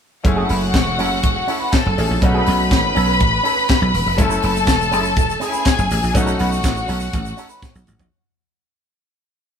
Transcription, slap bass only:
0.25 F#1
0.50 F#1
0.74 E1
1.00 F#1
1.24 E1
1.86 F#1
1.98 A1
2.11 A#1
2.22 B1
2.47 B1
2.71 A1
2.96 B1
3.21 A1
3.82 B1
3.94 E1
4.06 F1
4.19 F#1
4.44 F#1
4.68 E1
4.93 F#1
5.17 E1
5.79 F#1
5.91 A1
6.03 A#1
6.15 B1
6.40 B1
6.64 A1
6.89 B1
7.14 A1
7.75 B1
7.88 A1
7.99 A#1

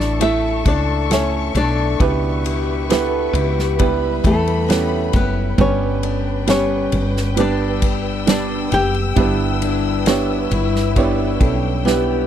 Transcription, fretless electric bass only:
Already playing: A1
0.65 C#2
1.55 B1
2.00 C#2
3.33 C#2
4.24 E2
5.14 F#1
5.58 G1
6.93 G1
8.72 F#1
9.17 G1
10.51 G1
11.40 B1

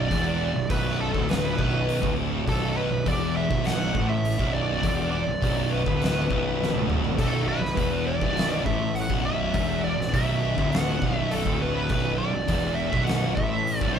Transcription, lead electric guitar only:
Already playing: D5
0.70 B4
1.01 A4
1.30 B4
2.49 A4
2.69 A4
2.77 B4
3.08 D5
3.36 E5
3.66 F#5
4.09 E5
4.54 D5
5.11 D5
5.70 B4
7.18 A4
7.48 B4
8.07 D5
8.66 E5
8.95 F#5
9.25 E5
9.84 D5
10.14 E5
10.71 F#5
11.18 E5
11.31 A4
11.62 B4
12.18 D5
12.75 E5
13.04 F#5
13.35 E5
13.78 D5
13.94 D5

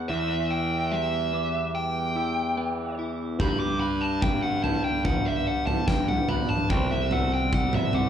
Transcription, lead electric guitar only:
0.09 E5
0.51 G5
0.92 E5
1.75 G5
3.41 B5
3.60 D6
3.80 B5
4.01 A5
4.22 G5
4.42 F#5
4.64 A5
4.84 G5
5.05 F#5
5.25 E5
5.47 F#5
5.67 A5
5.87 G5
6.08 F#5
6.29 B5
6.49 A5
6.70 G5
6.91 E5
7.12 F#5
7.33 G5
7.54 F#5
7.75 E5
7.95 F#5

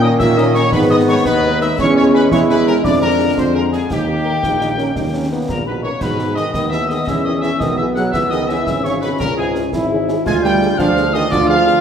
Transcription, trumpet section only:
0.03 D#5
0.19 E5
0.38 D#5
0.54 C#5
0.73 B4
0.89 D#5
1.09 C#5
1.25 B4
1.60 E5
1.78 C#5
1.96 C#5
2.14 B4
2.31 C#5
2.49 B4
2.67 A#4
2.85 D5
3.02 A#4
3.38 C5
3.54 A#4
3.72 G#4
3.91 G4
5.49 A#4
5.67 B4
5.83 C#5
6.01 B4
6.35 D#5
6.52 D#5
6.70 E5
6.88 D#5
7.06 E5
7.24 D#5
7.40 E5
7.58 D#5
7.77 E5
7.94 F#5
8.11 E5
8.29 D#5
8.48 E5
8.83 C#5
9.01 B4
9.19 A#4
9.36 G#4
10.26 G#5
10.44 G5
10.79 F5
11.14 D#5
11.30 D5
11.49 F5

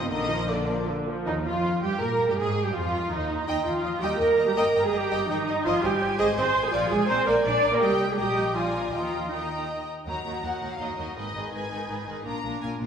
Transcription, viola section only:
Already playing: F3 C4
0.11 D3 A#3
0.30 F3
0.50 D3
0.69 F3
0.88 D3
1.08 F3
1.27 D#4
1.46 F4
1.83 G4
2.01 A#4
2.30 G4
2.38 G#4
2.66 G4
2.74 F4
3.11 D#4
3.48 D#4
3.66 F4
4.02 G4
4.20 A#4
4.48 G4
4.56 A#4
4.84 G#4
4.92 G4
5.29 D#4
5.65 F4
5.83 G4
6.18 G#4
6.37 C5
6.65 G#4
6.73 F4
6.90 G#4
7.08 C5
7.27 A#4
7.45 D5
7.73 A#4
7.82 G4
8.10 G#4
8.18 G4
8.55 F4
8.93 F4
9.31 D#4
10.07 F#3 D#4
10.26 F#3 D#4
10.45 F#3 D#4
10.62 F#3 D#4
10.80 F#3 D#4
10.98 F#3 D#4
11.16 D#3 D#4
11.35 D#3 D#4
11.53 D#3 D#4
11.71 D#3 D#4
11.89 D#3 D#4
12.07 D#3 D#4
12.25 A#3 D4
12.44 A#3 D4
12.62 A#3 D4
12.80 A#3 D4

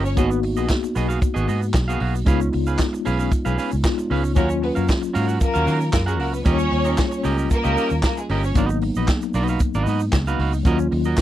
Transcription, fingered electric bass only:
Already playing: G1
0.17 G#1
0.58 A#1
0.96 B1
1.36 G#1
1.49 G#2
1.74 B1
2.01 B1
2.27 C#2
2.54 C#2
3.07 B1
3.46 B1
3.73 C#2
4.11 C#2
4.37 D#2
4.77 F#2
5.16 G#2
5.56 D#2
5.67 D#3
5.93 F#2
6.20 C#2
6.46 D#2
6.72 D#2
7.25 C#2
7.65 C#2
7.91 D#2
8.30 G1
8.56 G#1
8.96 A#1
9.34 B1
9.75 G#1
9.86 G#2
10.13 C#2
10.39 C#2
10.65 D#2
10.92 D#2

